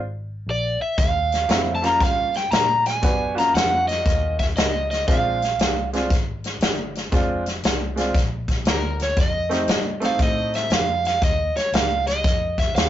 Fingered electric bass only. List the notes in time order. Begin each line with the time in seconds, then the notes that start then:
Already playing: G#1
0.46 A#1
0.80 muted fingered electric bass stroke
0.98 D#2
1.49 F2
2.00 G2
2.51 A#2
3.03 F#2
3.54 F2
4.06 D#2
4.57 C#2
5.08 A#1
5.58 C2
6.10 G#1
6.61 G1
7.12 F1
7.63 C2
8.14 A#1
8.64 D2
9.16 F2
9.68 G2
10.19 A2
10.70 F2
11.22 D#2
11.55 muted fingered electric bass stroke
11.72 C#2
12.24 F2
12.75 D#2